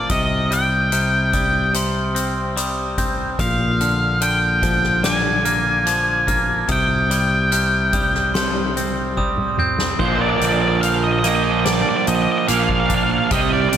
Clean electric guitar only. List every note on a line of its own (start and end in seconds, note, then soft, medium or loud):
0.00 0.10 F3 medium
0.00 0.10 A#3 medium
0.10 0.91 C3 medium
0.51 1.32 G3 medium
0.92 1.73 C3 medium
1.33 2.55 G3 medium
1.74 3.40 C3 medium
2.15 2.97 C4 medium
2.57 3.40 G3 medium
2.98 3.40 C4 medium
3.40 5.46 A#2 medium
3.81 4.20 D3 medium
4.21 5.02 D3 medium
4.63 5.85 F3 medium
5.03 6.68 D3 medium
5.45 6.26 A#3 medium
5.86 6.70 F3 medium
6.27 6.69 A#3 medium
6.69 7.51 C3 medium
7.10 7.93 G3 medium
7.52 8.34 C3 medium
7.94 9.16 G3 medium
8.35 10.01 C3 medium
8.77 9.58 C4 medium
9.17 10.00 G3 medium
9.59 10.00 C4 medium
10.01 12.07 A#2 medium
10.42 12.49 D3 medium
10.84 12.06 F3 medium
11.25 12.47 A#3 medium
12.07 13.31 F3 medium
12.49 13.31 A#3 medium
12.89 13.31 D4 medium
13.31 13.71 C3 medium
13.73 13.77 C3 medium